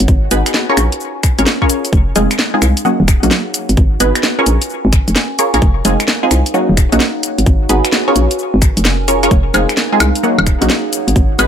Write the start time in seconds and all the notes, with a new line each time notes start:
Already playing: D#4 F#4 C#5 F#5
0.00 G#1, closed hi-hat, cabasa
0.08 G#1, kick, cabasa
0.28 G#1 B3 D#4 F#4 G#4 B4 G#5, closed hi-hat, cabasa
0.46 finger snap, closed hi-hat, cabasa
0.54 snare, cabasa
0.69 C#4 F4 G#4 A#4 C#5
0.77 A#1 C#4, finger snap, closed hi-hat, cabasa
0.92 closed hi-hat, cabasa
1.00 A#4, cabasa
1.23 finger snap, kick, closed hi-hat, cabasa
1.39 G#1 C#4 F4 G#4 A#4 C#5, closed hi-hat, cabasa
1.47 snare, cabasa
1.62 C#4 F4 G#4 A#4 C#5, kick
1.70 closed hi-hat, cabasa
1.85 closed hi-hat, cabasa
1.92 F1 D#4, kick, cabasa
2.16 F1 G#3 C4 D#4 F4 G#4, closed hi-hat, cabasa
2.31 finger snap, closed hi-hat, cabasa
2.36 G#4 F5, snare, cabasa
2.54 G#3 C4 D#4 F4 G#4
2.62 C2, finger snap, closed hi-hat, cabasa
2.77 closed hi-hat, cabasa
2.85 F#3 A#3 C#4 D#4 F#4, cabasa
3.00 D#1
3.08 finger snap, kick, closed hi-hat, cabasa
3.19 C#5 F#5
3.23 A#1 F#3 A#3 C#4 D#4 F#4, closed hi-hat, cabasa
3.31 snare, cabasa
3.54 F#4, closed hi-hat, cabasa
3.69 G#1, closed hi-hat, cabasa
3.77 G#1, kick, cabasa
3.97 G#1 B3 D#4 F#4 G#4 B4 G#5, closed hi-hat, cabasa
4.15 finger snap, closed hi-hat, cabasa
4.23 snare, cabasa
4.39 C#4 F4 G#4 A#4 C#5
4.46 A#1 C#4, closed hi-hat, cabasa
4.62 closed hi-hat, cabasa
4.70 cabasa
4.85 G#1
4.93 finger snap, kick, closed hi-hat, cabasa
5.00 A#4
5.08 F1, closed hi-hat, cabasa
5.16 snare, cabasa
5.39 C#4 F4 G#4 A#4 C#5, closed hi-hat, cabasa
5.54 A#1 C#4 F4 G#4 A#4 C#5, closed hi-hat, cabasa
5.62 F1 D#4, kick, cabasa
5.85 F1 G#3 C4 D#4 F4 G#4, closed hi-hat, cabasa
5.99 G#4, finger snap, closed hi-hat, cabasa
6.05 F5, snare, cabasa
6.23 G#3 C4 D#4 F4 G#4
6.31 C2, finger snap, closed hi-hat, cabasa
6.46 closed hi-hat, cabasa
6.54 F#3 A#3 C#4 D#4 F#4, cabasa
6.69 D#1
6.77 finger snap, kick, closed hi-hat, cabasa
6.88 C#5 F#5
6.92 A#1 F#3 A#3 C#4 D#4 F#4, closed hi-hat, cabasa
7.00 snare, cabasa
7.23 F#4, closed hi-hat, cabasa
7.38 G#1, closed hi-hat, cabasa
7.46 G#1, kick, cabasa
7.66 G#1 B3 D#4 F#4 G#4 B4 G#5, closed hi-hat, cabasa
7.85 finger snap, closed hi-hat, cabasa
7.93 snare, cabasa
8.08 C#4 F4 G#4 A#4 C#5
8.15 A#1 C#4, closed hi-hat, cabasa
8.31 closed hi-hat, cabasa
8.39 cabasa
8.44 A#4
8.54 G#1
8.62 finger snap, kick, closed hi-hat, cabasa
8.77 F1, closed hi-hat, cabasa
8.85 snare, cabasa
9.08 C#4 F4 G#4 A#4 C#5, closed hi-hat, cabasa
9.23 C#4 F4 G#4 A#4 C#5, closed hi-hat, cabasa
9.31 F1 D#4, kick, cabasa
9.51 F1 G#3 C4 D#4 F4 G#4, closed hi-hat, cabasa, high woodblock
9.69 finger snap, closed hi-hat, cabasa
9.74 F5, snare, cabasa
9.92 G#3 C4 D#4 F4 G#4
10.00 C2, finger snap, closed hi-hat, cabasa, high woodblock
10.15 closed hi-hat, cabasa
10.23 F#3 A#3 C#4 D#4 F#4, cabasa
10.38 D#1, high woodblock
10.47 finger snap, kick, closed hi-hat, cabasa
10.57 C#5 F#5
10.61 A#1 F#3 A#3 C#4 D#4 F#4, closed hi-hat, cabasa
10.70 snare, cabasa
10.92 F#4, closed hi-hat, cabasa
11.08 G#1, closed hi-hat, cabasa
11.16 G#1, kick, cabasa
11.36 G#1 B3 D#4 F#4 G#4 B4 G#5, closed hi-hat, cabasa, high woodblock